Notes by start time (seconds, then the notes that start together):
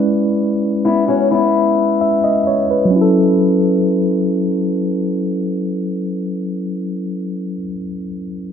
Already playing: G#3 C#4 E4 B4 D5
0.85 B3 E4
1.08 C#4 F#4
1.31 B3 E4
2.01 E5
2.24 D#5
2.47 C#5
2.71 B4
2.85 F#3
2.91 C#4
2.96 E4
3.02 A4